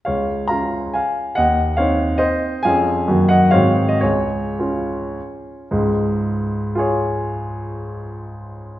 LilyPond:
<<
  \new Staff \with { instrumentName = "Grand piano" } { \time 3/4 \key des \major \tempo 4 = 121 <des'' f''>4 <f'' bes''>4 <f'' aes''>4 | <ees'' ges''>4 <des'' f''>4 <c'' ees''>4 | <f'' aes''>4. <ees'' ges''>8 <des'' f''>8. ees''16 | <aes' des''>2 r4 |
r2 <f' aes' des''>4~ | <f' aes' des''>2. | }
  \new Staff \with { instrumentName = "Grand piano" } { \time 3/4 \key des \major des,4 <des' f'>2 | ees,4 <c' ees'>2 | <f, f des' aes'>4 <ges, ees bes ges'>4 <aes, ees c' ges'>4 | des,4 <des' f'>2 |
<des, aes,>2.~ | <des, aes,>2. | }
>>